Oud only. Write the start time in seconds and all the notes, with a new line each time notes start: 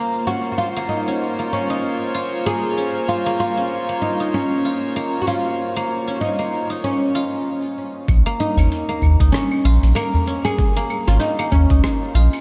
Already playing: A#3
0.27 F#4
0.52 F#4
0.58 F4
0.89 D#4
1.53 C#4
2.46 G#4
3.09 F4
3.40 F4
4.02 D#4
4.34 C#4
5.22 F#4
5.28 F4
6.21 D#4
6.84 C#4
8.40 D#4
9.32 C#4
9.95 A#4
10.45 G#4
11.07 F4
11.20 D#4
11.52 C#4